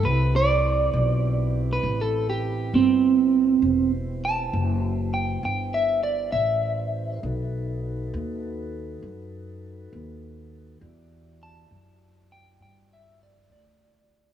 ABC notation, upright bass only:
X:1
M:12/8
L:1/8
Q:3/8=67
K:Clyd
V:1 name="Upright bass" clef=bass
C,,3 B,,,3 A,,,3 G,,,3 | E,,,3 F,,,3 G,,,3 A,,,3 | B,,,3 ^D,,3 F,,3 D,,3 | E,,3 F,,3 G,,3 D,,3 |]